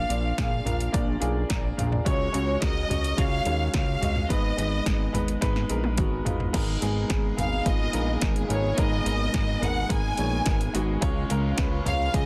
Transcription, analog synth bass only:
0, 0, Header, 1, 2, 480
1, 0, Start_track
1, 0, Tempo, 560224
1, 1764, Time_signature, 4, 2, 24, 8
1, 10501, End_track
2, 0, Start_track
2, 0, Title_t, "Analog synth bass"
2, 0, Program_c, 0, 38
2, 83, Note_on_c, 0, 34, 88
2, 280, Note_off_c, 0, 34, 0
2, 326, Note_on_c, 0, 34, 91
2, 522, Note_off_c, 0, 34, 0
2, 563, Note_on_c, 0, 34, 91
2, 760, Note_off_c, 0, 34, 0
2, 805, Note_on_c, 0, 34, 102
2, 1001, Note_off_c, 0, 34, 0
2, 1044, Note_on_c, 0, 35, 91
2, 1241, Note_off_c, 0, 35, 0
2, 1287, Note_on_c, 0, 34, 93
2, 1483, Note_off_c, 0, 34, 0
2, 1525, Note_on_c, 0, 34, 99
2, 1721, Note_off_c, 0, 34, 0
2, 1767, Note_on_c, 0, 37, 99
2, 1963, Note_off_c, 0, 37, 0
2, 2008, Note_on_c, 0, 37, 85
2, 2203, Note_off_c, 0, 37, 0
2, 2246, Note_on_c, 0, 37, 92
2, 2442, Note_off_c, 0, 37, 0
2, 2488, Note_on_c, 0, 37, 95
2, 2684, Note_off_c, 0, 37, 0
2, 2725, Note_on_c, 0, 37, 98
2, 2922, Note_off_c, 0, 37, 0
2, 2965, Note_on_c, 0, 39, 90
2, 3162, Note_off_c, 0, 39, 0
2, 3205, Note_on_c, 0, 37, 91
2, 3402, Note_off_c, 0, 37, 0
2, 3447, Note_on_c, 0, 37, 93
2, 3643, Note_off_c, 0, 37, 0
2, 3686, Note_on_c, 0, 32, 97
2, 3882, Note_off_c, 0, 32, 0
2, 3923, Note_on_c, 0, 32, 92
2, 4121, Note_off_c, 0, 32, 0
2, 4166, Note_on_c, 0, 32, 88
2, 4363, Note_off_c, 0, 32, 0
2, 4404, Note_on_c, 0, 32, 87
2, 4601, Note_off_c, 0, 32, 0
2, 4645, Note_on_c, 0, 32, 99
2, 4842, Note_off_c, 0, 32, 0
2, 4884, Note_on_c, 0, 34, 82
2, 5125, Note_on_c, 0, 32, 97
2, 5138, Note_off_c, 0, 34, 0
2, 5322, Note_off_c, 0, 32, 0
2, 5363, Note_on_c, 0, 32, 91
2, 5561, Note_off_c, 0, 32, 0
2, 5605, Note_on_c, 0, 32, 101
2, 5802, Note_off_c, 0, 32, 0
2, 5846, Note_on_c, 0, 32, 89
2, 6042, Note_off_c, 0, 32, 0
2, 6084, Note_on_c, 0, 32, 98
2, 6281, Note_off_c, 0, 32, 0
2, 6323, Note_on_c, 0, 32, 98
2, 6521, Note_off_c, 0, 32, 0
2, 6561, Note_on_c, 0, 32, 90
2, 6759, Note_off_c, 0, 32, 0
2, 6803, Note_on_c, 0, 34, 89
2, 7001, Note_off_c, 0, 34, 0
2, 7042, Note_on_c, 0, 32, 93
2, 7240, Note_off_c, 0, 32, 0
2, 7282, Note_on_c, 0, 32, 100
2, 7480, Note_off_c, 0, 32, 0
2, 7522, Note_on_c, 0, 32, 98
2, 7720, Note_off_c, 0, 32, 0
2, 7760, Note_on_c, 0, 32, 98
2, 7959, Note_off_c, 0, 32, 0
2, 8005, Note_on_c, 0, 32, 98
2, 8202, Note_off_c, 0, 32, 0
2, 8243, Note_on_c, 0, 32, 96
2, 8441, Note_off_c, 0, 32, 0
2, 8484, Note_on_c, 0, 32, 96
2, 8681, Note_off_c, 0, 32, 0
2, 8727, Note_on_c, 0, 34, 97
2, 8923, Note_off_c, 0, 34, 0
2, 8963, Note_on_c, 0, 32, 97
2, 9161, Note_off_c, 0, 32, 0
2, 9209, Note_on_c, 0, 32, 96
2, 9404, Note_off_c, 0, 32, 0
2, 9444, Note_on_c, 0, 37, 101
2, 9641, Note_off_c, 0, 37, 0
2, 9690, Note_on_c, 0, 37, 93
2, 9884, Note_off_c, 0, 37, 0
2, 9923, Note_on_c, 0, 37, 100
2, 10120, Note_off_c, 0, 37, 0
2, 10167, Note_on_c, 0, 37, 94
2, 10363, Note_off_c, 0, 37, 0
2, 10401, Note_on_c, 0, 37, 100
2, 10501, Note_off_c, 0, 37, 0
2, 10501, End_track
0, 0, End_of_file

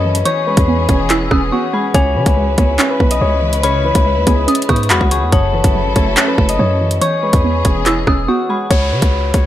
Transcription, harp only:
0, 0, Header, 1, 2, 480
1, 0, Start_track
1, 0, Key_signature, 4, "minor"
1, 0, Tempo, 422535
1, 290, Time_signature, 4, 2, 24, 8
1, 10749, End_track
2, 0, Start_track
2, 0, Title_t, "Harp"
2, 0, Program_c, 0, 46
2, 0, Note_on_c, 0, 66, 98
2, 0, Note_on_c, 0, 68, 80
2, 0, Note_on_c, 0, 71, 78
2, 0, Note_on_c, 0, 73, 82
2, 0, Note_on_c, 0, 75, 76
2, 284, Note_off_c, 0, 73, 0
2, 288, Note_on_c, 0, 73, 99
2, 524, Note_off_c, 0, 71, 0
2, 528, Note_on_c, 0, 71, 81
2, 654, Note_off_c, 0, 66, 0
2, 712, Note_off_c, 0, 68, 0
2, 1011, Note_on_c, 0, 68, 83
2, 1718, Note_off_c, 0, 75, 0
2, 1728, Note_on_c, 0, 66, 86
2, 1961, Note_off_c, 0, 68, 0
2, 1965, Note_on_c, 0, 68, 74
2, 2204, Note_off_c, 0, 73, 0
2, 2209, Note_on_c, 0, 73, 110
2, 2449, Note_off_c, 0, 71, 0
2, 2453, Note_on_c, 0, 71, 69
2, 2929, Note_off_c, 0, 73, 0
2, 2933, Note_on_c, 0, 73, 72
2, 3288, Note_off_c, 0, 71, 0
2, 3292, Note_on_c, 0, 71, 83
2, 3529, Note_on_c, 0, 75, 79
2, 3646, Note_off_c, 0, 73, 0
2, 3650, Note_on_c, 0, 73, 84
2, 4127, Note_off_c, 0, 73, 0
2, 4132, Note_on_c, 0, 73, 113
2, 4366, Note_off_c, 0, 71, 0
2, 4370, Note_on_c, 0, 71, 76
2, 4497, Note_off_c, 0, 66, 0
2, 4548, Note_off_c, 0, 68, 0
2, 4846, Note_on_c, 0, 68, 79
2, 5556, Note_off_c, 0, 75, 0
2, 5566, Note_on_c, 0, 66, 92
2, 5804, Note_off_c, 0, 68, 0
2, 5808, Note_on_c, 0, 68, 77
2, 6039, Note_off_c, 0, 73, 0
2, 6043, Note_on_c, 0, 73, 101
2, 6286, Note_off_c, 0, 71, 0
2, 6290, Note_on_c, 0, 71, 83
2, 6765, Note_off_c, 0, 73, 0
2, 6769, Note_on_c, 0, 73, 78
2, 7122, Note_off_c, 0, 71, 0
2, 7126, Note_on_c, 0, 71, 81
2, 7370, Note_on_c, 0, 75, 77
2, 7486, Note_off_c, 0, 73, 0
2, 7490, Note_on_c, 0, 73, 85
2, 7963, Note_off_c, 0, 73, 0
2, 7968, Note_on_c, 0, 73, 101
2, 8202, Note_off_c, 0, 71, 0
2, 8207, Note_on_c, 0, 71, 79
2, 8334, Note_off_c, 0, 66, 0
2, 8391, Note_off_c, 0, 68, 0
2, 8691, Note_on_c, 0, 68, 84
2, 9396, Note_off_c, 0, 75, 0
2, 9408, Note_on_c, 0, 66, 85
2, 9641, Note_off_c, 0, 68, 0
2, 9646, Note_on_c, 0, 68, 74
2, 9884, Note_off_c, 0, 73, 0
2, 9889, Note_on_c, 0, 73, 106
2, 10128, Note_off_c, 0, 71, 0
2, 10132, Note_on_c, 0, 71, 68
2, 10608, Note_off_c, 0, 73, 0
2, 10612, Note_on_c, 0, 73, 74
2, 10749, Note_off_c, 0, 66, 0
2, 10749, Note_off_c, 0, 68, 0
2, 10749, Note_off_c, 0, 71, 0
2, 10749, Note_off_c, 0, 73, 0
2, 10749, End_track
0, 0, End_of_file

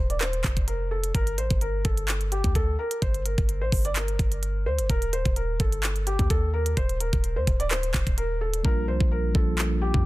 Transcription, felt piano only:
0, 0, Header, 1, 2, 480
1, 0, Start_track
1, 0, Tempo, 468750
1, 1174, Time_signature, 4, 2, 24, 8
1, 10299, End_track
2, 0, Start_track
2, 0, Title_t, "Felt piano"
2, 0, Program_c, 0, 0
2, 101, Note_on_c, 0, 74, 69
2, 194, Note_off_c, 0, 74, 0
2, 211, Note_on_c, 0, 72, 90
2, 663, Note_off_c, 0, 72, 0
2, 692, Note_on_c, 0, 70, 75
2, 891, Note_off_c, 0, 70, 0
2, 933, Note_on_c, 0, 69, 75
2, 1131, Note_off_c, 0, 69, 0
2, 1176, Note_on_c, 0, 70, 101
2, 1373, Note_off_c, 0, 70, 0
2, 1412, Note_on_c, 0, 72, 77
2, 1611, Note_off_c, 0, 72, 0
2, 1653, Note_on_c, 0, 70, 79
2, 1851, Note_off_c, 0, 70, 0
2, 1891, Note_on_c, 0, 69, 88
2, 2343, Note_off_c, 0, 69, 0
2, 2373, Note_on_c, 0, 67, 77
2, 2571, Note_off_c, 0, 67, 0
2, 2616, Note_on_c, 0, 69, 93
2, 2813, Note_off_c, 0, 69, 0
2, 2855, Note_on_c, 0, 70, 85
2, 3052, Note_off_c, 0, 70, 0
2, 3091, Note_on_c, 0, 72, 93
2, 3290, Note_off_c, 0, 72, 0
2, 3332, Note_on_c, 0, 70, 70
2, 3678, Note_off_c, 0, 70, 0
2, 3701, Note_on_c, 0, 72, 80
2, 3899, Note_off_c, 0, 72, 0
2, 3943, Note_on_c, 0, 74, 78
2, 4035, Note_off_c, 0, 74, 0
2, 4054, Note_on_c, 0, 70, 76
2, 4733, Note_off_c, 0, 70, 0
2, 4774, Note_on_c, 0, 72, 81
2, 4972, Note_off_c, 0, 72, 0
2, 5013, Note_on_c, 0, 70, 100
2, 5211, Note_off_c, 0, 70, 0
2, 5252, Note_on_c, 0, 72, 88
2, 5451, Note_off_c, 0, 72, 0
2, 5491, Note_on_c, 0, 70, 86
2, 5690, Note_off_c, 0, 70, 0
2, 5733, Note_on_c, 0, 69, 84
2, 6184, Note_off_c, 0, 69, 0
2, 6213, Note_on_c, 0, 67, 85
2, 6411, Note_off_c, 0, 67, 0
2, 6453, Note_on_c, 0, 69, 88
2, 6651, Note_off_c, 0, 69, 0
2, 6692, Note_on_c, 0, 70, 79
2, 6890, Note_off_c, 0, 70, 0
2, 6931, Note_on_c, 0, 72, 95
2, 7130, Note_off_c, 0, 72, 0
2, 7171, Note_on_c, 0, 70, 77
2, 7517, Note_off_c, 0, 70, 0
2, 7539, Note_on_c, 0, 72, 74
2, 7738, Note_off_c, 0, 72, 0
2, 7780, Note_on_c, 0, 74, 80
2, 7873, Note_off_c, 0, 74, 0
2, 7894, Note_on_c, 0, 72, 95
2, 8345, Note_off_c, 0, 72, 0
2, 8372, Note_on_c, 0, 70, 80
2, 8570, Note_off_c, 0, 70, 0
2, 8613, Note_on_c, 0, 69, 74
2, 8811, Note_off_c, 0, 69, 0
2, 8854, Note_on_c, 0, 70, 107
2, 9052, Note_off_c, 0, 70, 0
2, 9094, Note_on_c, 0, 72, 78
2, 9292, Note_off_c, 0, 72, 0
2, 9333, Note_on_c, 0, 70, 82
2, 9531, Note_off_c, 0, 70, 0
2, 9571, Note_on_c, 0, 69, 82
2, 10023, Note_off_c, 0, 69, 0
2, 10051, Note_on_c, 0, 67, 80
2, 10250, Note_off_c, 0, 67, 0
2, 10299, End_track
0, 0, End_of_file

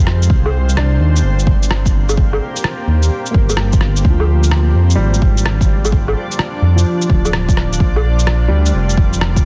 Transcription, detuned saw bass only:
0, 0, Header, 1, 2, 480
1, 0, Start_track
1, 0, Tempo, 468750
1, 308, Time_signature, 4, 2, 24, 8
1, 9677, End_track
2, 0, Start_track
2, 0, Title_t, "Detuned saw bass"
2, 0, Program_c, 0, 39
2, 0, Note_on_c, 0, 41, 97
2, 295, Note_off_c, 0, 41, 0
2, 305, Note_on_c, 0, 36, 99
2, 1016, Note_off_c, 0, 36, 0
2, 1022, Note_on_c, 0, 39, 91
2, 1252, Note_off_c, 0, 39, 0
2, 1263, Note_on_c, 0, 31, 81
2, 2455, Note_off_c, 0, 31, 0
2, 2941, Note_on_c, 0, 39, 95
2, 3172, Note_off_c, 0, 39, 0
2, 3423, Note_on_c, 0, 31, 92
2, 4135, Note_off_c, 0, 31, 0
2, 4142, Note_on_c, 0, 38, 103
2, 4854, Note_off_c, 0, 38, 0
2, 4862, Note_on_c, 0, 41, 96
2, 5092, Note_off_c, 0, 41, 0
2, 5098, Note_on_c, 0, 32, 89
2, 6292, Note_off_c, 0, 32, 0
2, 6777, Note_on_c, 0, 41, 90
2, 7009, Note_off_c, 0, 41, 0
2, 7266, Note_on_c, 0, 26, 92
2, 7977, Note_off_c, 0, 26, 0
2, 7987, Note_on_c, 0, 34, 100
2, 8697, Note_off_c, 0, 34, 0
2, 8703, Note_on_c, 0, 38, 91
2, 8932, Note_off_c, 0, 38, 0
2, 8948, Note_on_c, 0, 29, 86
2, 9677, Note_off_c, 0, 29, 0
2, 9677, End_track
0, 0, End_of_file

